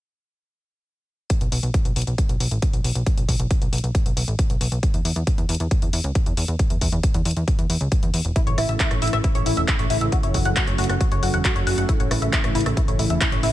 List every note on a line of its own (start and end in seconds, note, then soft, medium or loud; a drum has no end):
1.30 kick loud
1.30 closed hi-hat medium
1.41 1.48 B1 medium
1.41 closed hi-hat medium
1.52 1.59 B1 loud
1.52 open hi-hat loud
1.63 1.70 B1 medium
1.63 closed hi-hat medium
1.74 kick loud
1.74 closed hi-hat medium
1.85 1.92 B1 medium
1.85 closed hi-hat medium
1.96 2.03 B1 loud
1.96 open hi-hat loud
2.02 closed hi-hat medium
2.07 2.15 B1 medium
2.07 closed hi-hat medium
2.18 kick loud
2.18 closed hi-hat medium
2.29 2.37 B1 medium
2.29 closed hi-hat medium
2.40 2.48 B1 medium
2.40 open hi-hat loud
2.51 2.59 A1 medium
2.51 closed hi-hat medium
2.62 kick loud
2.62 closed hi-hat medium
2.73 2.81 B1 medium
2.73 closed hi-hat medium
2.84 2.92 B1 loud
2.84 open hi-hat loud
2.95 3.03 B1 medium
2.95 closed hi-hat medium
3.06 kick loud
3.06 closed hi-hat medium
3.18 3.25 B1 medium
3.18 closed hi-hat medium
3.29 3.36 B1 loud
3.29 kick medium
3.29 open hi-hat loud
3.40 3.47 B1 medium
3.40 closed hi-hat medium
3.51 kick loud
3.51 closed hi-hat medium
3.62 3.69 B1 medium
3.62 closed hi-hat medium
3.73 3.80 B1 medium
3.73 open hi-hat loud
3.78 closed hi-hat medium
3.84 3.91 B1 medium
3.84 closed hi-hat medium
3.95 kick loud
3.95 closed hi-hat medium
4.06 4.13 B1 medium
4.06 closed hi-hat medium
4.17 4.24 B1 loud
4.17 open hi-hat loud
4.28 4.35 A1 medium
4.28 closed hi-hat medium
4.39 kick loud
4.39 closed hi-hat medium
4.50 4.57 B1 medium
4.50 closed hi-hat soft
4.61 4.68 B1 loud
4.61 open hi-hat loud
4.72 4.79 B1 medium
4.72 closed hi-hat medium
4.83 kick loud
4.83 closed hi-hat medium
4.94 5.01 E2 medium
4.94 closed hi-hat soft
5.05 5.12 E2 loud
5.05 open hi-hat loud
5.16 5.23 E2 medium
5.16 closed hi-hat soft
5.27 kick loud
5.27 closed hi-hat medium
5.38 5.45 E2 medium
5.38 closed hi-hat soft
5.49 5.56 E2 loud
5.49 open hi-hat loud
5.55 closed hi-hat medium
5.60 5.67 E2 medium
5.60 closed hi-hat soft
5.71 kick loud
5.71 closed hi-hat medium
5.82 5.89 E2 medium
5.82 closed hi-hat soft
5.93 6.00 E2 loud
5.93 open hi-hat loud
6.04 6.12 C#2 medium
6.04 closed hi-hat soft
6.15 kick loud
6.15 closed hi-hat medium
6.26 6.34 E2 medium
6.26 closed hi-hat medium
6.37 6.45 E2 loud
6.37 open hi-hat loud
6.48 6.56 E2 medium
6.48 closed hi-hat medium
6.59 kick loud
6.59 closed hi-hat medium
6.70 6.78 E2 medium
6.70 closed hi-hat soft
6.81 6.89 E2 loud
6.81 kick medium
6.81 open hi-hat loud
6.92 7.00 E2 medium
6.92 closed hi-hat soft
7.03 kick loud
7.03 closed hi-hat medium
7.14 7.22 E2 medium
7.14 closed hi-hat soft
7.25 7.33 E2 medium
7.25 open hi-hat loud
7.31 closed hi-hat medium
7.37 7.44 E2 medium
7.37 closed hi-hat soft
7.48 kick loud
7.48 closed hi-hat medium
7.59 7.66 E2 medium
7.59 closed hi-hat medium
7.70 7.77 E2 loud
7.70 open hi-hat loud
7.81 7.88 C#2 medium
7.81 closed hi-hat soft
7.92 kick loud
7.92 closed hi-hat medium
8.03 8.10 E2 medium
8.03 closed hi-hat medium
8.14 8.21 E2 loud
8.14 open hi-hat loud
8.25 8.32 E1 medium
8.25 closed hi-hat soft
8.36 8.51 C#3 medium
8.36 8.51 E3 medium
8.36 8.51 A3 medium
8.36 8.40 E4 medium
8.36 8.51 E4 medium
8.36 kick loud
8.36 closed hi-hat medium
8.47 8.54 A1 medium
8.47 8.57 C#5 medium
8.47 closed hi-hat soft
8.58 8.65 A1 loud
8.58 8.68 E4 medium
8.58 cross-stick medium
8.58 open hi-hat loud
8.69 8.76 A1 medium
8.69 8.84 C#3 medium
8.69 8.84 E3 medium
8.69 8.84 A3 medium
8.69 8.84 E4 medium
8.69 8.73 E5 medium
8.69 closed hi-hat soft
8.80 8.87 E4 loud
8.80 kick loud
8.80 clap loud
8.80 closed hi-hat medium
8.91 8.98 A1 medium
8.91 9.07 C#3 medium
8.91 9.06 E3 medium
8.91 9.07 A3 medium
8.91 9.07 E4 medium
8.91 8.98 C#5 medium
8.91 cross-stick medium
8.91 closed hi-hat soft
9.02 9.09 A1 medium
9.02 9.09 E4 loud
9.02 open hi-hat loud
9.07 closed hi-hat medium
9.13 9.20 A1 medium
9.13 9.17 E5 medium
9.13 cross-stick medium
9.13 closed hi-hat soft
9.24 9.28 E4 medium
9.24 kick loud
9.24 closed hi-hat medium
9.35 9.42 A1 medium
9.35 9.43 C#3 medium
9.35 9.43 E3 medium
9.35 9.43 A3 medium
9.35 9.43 E4 medium
9.35 9.45 C#5 medium
9.35 closed hi-hat soft
9.46 9.53 A1 loud
9.46 9.62 C#3 medium
9.46 9.62 E3 medium
9.46 9.62 A3 medium
9.46 9.56 E4 medium
9.46 9.62 E4 medium
9.46 open hi-hat loud
9.57 9.64 E1 medium
9.57 9.61 E5 medium
9.57 closed hi-hat soft
9.68 9.75 E4 loud
9.68 kick loud
9.68 clap loud
9.68 closed hi-hat medium
9.79 9.87 A1 medium
9.79 9.87 C#3 medium
9.79 9.87 E3 medium
9.79 9.87 A3 medium
9.79 9.87 E4 medium
9.79 9.86 C#5 medium
9.79 closed hi-hat soft
9.90 9.98 A1 loud
9.90 10.06 C#3 medium
9.90 10.06 E3 medium
9.90 10.06 A3 medium
9.90 9.97 E4 loud
9.90 10.06 E4 medium
9.90 open hi-hat loud
10.01 10.09 A1 medium
10.01 10.05 E5 medium
10.01 closed hi-hat soft
10.12 10.28 C#3 medium
10.12 10.28 F#3 medium
10.12 10.28 A3 medium
10.12 10.16 F#4 medium
10.12 10.28 F#4 loud
10.12 kick loud
10.12 closed hi-hat medium
10.23 10.31 F#1 medium
10.23 10.34 C#5 medium
10.23 closed hi-hat medium
10.34 10.42 F#1 loud
10.34 10.45 F#4 medium
10.34 kick medium
10.34 open hi-hat loud
10.45 10.53 F#1 medium
10.45 10.61 C#3 medium
10.45 10.61 F#3 medium
10.45 10.61 A3 medium
10.45 10.61 F#4 medium
10.45 10.50 F#5 medium
10.45 closed hi-hat medium
10.56 10.63 F#4 loud
10.56 kick loud
10.56 clap loud
10.56 closed hi-hat medium
10.67 10.75 F#1 medium
10.67 10.83 C#3 medium
10.67 10.83 F#3 medium
10.67 10.83 A3 medium
10.67 10.83 F#4 medium
10.67 10.74 C#5 medium
10.67 closed hi-hat medium
10.78 10.86 F#1 medium
10.78 10.85 F#4 loud
10.78 open hi-hat loud
10.84 closed hi-hat medium
10.89 10.97 F#1 medium
10.89 10.94 F#5 medium
10.89 cross-stick medium
10.89 closed hi-hat medium
11.01 11.05 F#4 medium
11.01 kick loud
11.01 closed hi-hat medium
11.12 11.19 F#1 medium
11.12 11.19 C#3 medium
11.12 11.19 F#3 medium
11.12 11.19 A3 medium
11.12 11.19 F#4 medium
11.12 11.22 C#5 medium
11.12 closed hi-hat medium
11.23 11.30 F#1 loud
11.23 11.38 C#3 medium
11.23 11.38 F#3 medium
11.23 11.38 A3 medium
11.23 11.33 F#4 medium
11.23 11.38 F#4 medium
11.23 open hi-hat loud
11.34 11.41 E1 medium
11.34 11.38 F#5 medium
11.34 closed hi-hat soft
11.45 11.52 F#4 loud
11.45 kick loud
11.45 clap loud
11.45 closed hi-hat medium
11.56 11.63 F#1 medium
11.56 11.63 C#3 medium
11.56 11.64 F#3 medium
11.56 11.64 A3 medium
11.56 11.64 F#4 medium
11.56 11.63 C#5 medium
11.56 closed hi-hat medium
11.67 11.74 F#1 loud
11.67 11.82 C#3 medium
11.67 11.82 F#3 medium
11.67 11.82 A3 medium
11.67 11.74 F#4 loud
11.67 11.82 F#4 medium
11.67 open hi-hat loud
11.78 11.85 F#1 medium
11.78 11.82 F#5 medium
11.78 closed hi-hat medium
11.89 12.04 C#3 medium
11.89 12.04 E3 medium
11.89 12.04 A3 medium
11.89 12.04 E4 medium
11.89 11.93 E4 medium
11.89 kick loud
11.89 closed hi-hat medium
12.00 12.07 A1 medium
12.00 12.10 C#5 medium
12.00 closed hi-hat medium
12.11 12.18 A1 loud
12.11 12.21 E4 medium
12.11 cross-stick medium
12.11 open hi-hat loud
12.22 12.29 A1 medium
12.22 12.37 C#3 medium
12.22 12.37 E3 medium
12.22 12.37 A3 medium
12.22 12.37 E4 medium
12.22 12.26 E5 medium
12.22 closed hi-hat medium
12.33 12.40 E4 loud
12.33 kick loud
12.33 clap loud
12.33 closed hi-hat medium
12.44 12.51 A1 medium
12.44 12.59 C#3 medium
12.44 12.59 E3 loud
12.44 12.59 A3 medium
12.44 12.59 E4 medium
12.44 12.51 C#5 medium
12.44 cross-stick medium
12.44 closed hi-hat medium
12.55 12.62 A1 loud
12.55 12.62 E4 loud
12.55 open hi-hat medium
12.61 closed hi-hat medium
12.66 12.73 A1 medium
12.66 12.70 E5 medium
12.66 cross-stick medium
12.66 closed hi-hat medium
12.77 12.81 E4 medium
12.77 kick loud
12.77 closed hi-hat medium
12.88 12.95 A1 medium
12.88 12.96 C#3 medium
12.88 12.96 E3 medium
12.88 12.96 A3 medium
12.88 12.96 E4 medium
12.88 12.98 C#5 medium
12.88 closed hi-hat medium
12.99 13.06 A1 loud
12.99 13.15 C#3 medium
12.99 13.15 E3 medium
12.99 13.15 A3 medium
12.99 13.15 E4 medium
12.99 13.09 E4 medium
12.99 open hi-hat medium
13.10 13.17 E1 medium
13.10 13.14 E5 medium
13.10 closed hi-hat medium
13.21 13.28 E4 loud
13.21 kick loud
13.21 clap loud
13.21 closed hi-hat medium
13.32 13.39 A1 medium
13.32 13.40 C#3 medium
13.32 13.40 E3 medium
13.32 13.40 A3 medium
13.32 13.40 E4 medium
13.32 13.39 C#5 medium
13.32 closed hi-hat medium
13.43 13.50 A1 loud
13.43 13.53 C#3 medium
13.43 13.53 E3 medium
13.43 13.53 A3 medium
13.43 13.53 E4 medium
13.43 13.50 E4 loud
13.43 open hi-hat loud